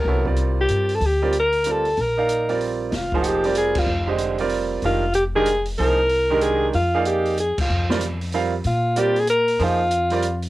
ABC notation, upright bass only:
X:1
M:3/4
L:1/8
Q:"Swing" 1/4=189
K:Gm
V:1 name="Upright bass" clef=bass
C,,4 G,,2 | D,,6 | B,,,6 | [K:Fdor] F,,,6 |
F,,,6 | F,,,6 | C,,6 | F,,4- F,, z |
F,,6 | B,,6 | F,,6 |]